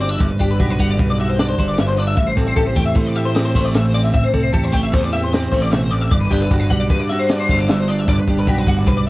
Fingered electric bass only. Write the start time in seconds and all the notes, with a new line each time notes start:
Already playing: G1
0.20 G1
0.40 G1
0.60 B1
0.80 G1
1.00 B1
1.59 G1
2.17 A1
2.37 A1
2.56 A1
2.76 E2
2.96 A2
3.55 A1
4.14 A1
4.34 C2
4.54 E2
4.74 A1
4.93 E2
5.52 A1
6.12 G1
6.31 G1
6.51 G1
6.71 B1
6.91 G2
7.49 G1
8.08 G1
8.28 G1
8.47 B1
8.67 G1
8.87 B1